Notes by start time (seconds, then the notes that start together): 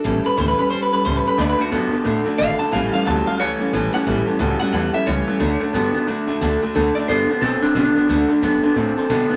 0.04 A1 A2 E3 G3 C#4 G4 A4
0.24 G3 C#4 G4 A4 B4
0.37 D2 A2 E3 G3 C#4 G4 A4 C5
0.48 B4
0.58 G3 C#4 G4 A4 B4
0.70 C#2 G3 C#4 G4 A4 C5
0.83 B4
0.91 C#2 G3 C#4 G4 A4 B4
1.05 C#2 A2 E3 G3 C#4 G4 A4 C5
1.17 B4
1.25 G3 C#4 G4 A4 B4, muted upright bass stroke
1.38 D2 D3 A3 D4 F#4 A4 D5
1.50 B4
1.58 D3 A3 D4 F#4 A4
1.71 F#2 D3 A3 B3 D4 F#4 A4
1.92 D3 B3 D4 F#4 A4, muted upright bass stroke
2.04 A2 D3 A3 D4 F#4 A4
2.25 D3 A3 D4 F#4 A4
2.38 G#1 D3 A3 D4 F#4 A4 F5
2.59 D3 A3 D4 F#4 A4 A5, muted upright bass stroke
2.72 A1 A2 E3 G3 C#4 G4 A4 F5
2.92 A2 E3 G3 C#4 G4 A4 F5
3.06 D2 A2 E3 F#3 G3 C#4 G4 A4 A5
3.26 A2 F#3 G3 C#4 G4 A4 F5
3.39 C#2 A2 E3 G3 C#4 G4 A4 C#5
3.59 C#2 A2 E3 G3 C#4 G4 A4
3.73 A1 A2 E3 G3 C#4 G4 A4
3.93 A2 E3 G3 C#4 G4 A4 F#5
4.06 A1 A2 E3 G3 C#4 G4 A4
4.27 A2 E3 G3 C#4 G4 A4
4.39 C#2 A2 E3 F#3 G3 C#4 G4 A4
4.60 A2 F#3 G3 C#4 G4 A4 F#5, muted upright bass stroke
4.73 E2 A2 E3 G3 C#4 G4 A4 F#5
4.93 A2 E3 G3 C#4 G4 A4 E5
5.06 C#2 A2 E3 G3 C#4 G4 A4 C#5
5.27 A2 E3 G3 C#4 G4 A4
5.39 D2 D3 A3 D4 F#4 A4
5.60 D3 A3 D4 F#4 A4
5.73 G2 D3 A3 B3 D4 F#4 A4
5.94 D3 B3 D4 F#4 A4, muted upright bass stroke
6.07 F#2 D3 A3 D4 F#4 A4
6.27 F#2 D3 A3 D4 F#4 A4
6.41 D2 D3 A3 D4 F#4 A4
6.62 D3 A3 D4 F#4 A4
6.74 D2 D3 A3 D4 F#4 A4
6.95 D3 A3 D4 F#4 A4 D5
7.08 G2 D3 A3 B3 D4 F#4 A4 C5
7.29 D3 B3 D4 F#4 A4, muted upright bass stroke
7.41 B2 D3 A3 C4 D4 F#4 A4
7.62 D3 C4 D4 F#4 A4, muted upright bass stroke
7.75 B2 D3 A3 B3 D4 F#4 A4
7.95 D3 B3 D4 F#4 A4, muted upright bass stroke
8.08 D2 D3 A3 D4 F#4 A4
8.28 D3 A3 D4 F#4 A4
8.41 F#2 D3 A3 B3 D4 F#4 A4
8.63 D3 B3 D4 F#4 A4
8.75 A2 D3 A3 C4 D4 F#4 A4
8.96 D3 C4 D4 F#4 A4, muted upright bass stroke
9.09 B2 D3 A3 B3 D4 F#4 A4
9.30 D3 B3 D4 F#4 A4, muted upright bass stroke